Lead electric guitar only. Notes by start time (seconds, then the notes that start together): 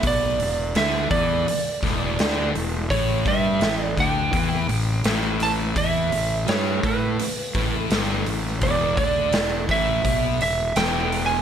0.07 D5
0.77 E5
1.11 D5
2.90 C#5
3.28 E5
3.82 D5
4.00 G5
5.43 A5
5.78 E5
6.49 C#5
6.86 B4
7.78 A4
8.63 D5
8.97 D5
9.71 E5
10.42 E5
10.76 G5
11.26 G#5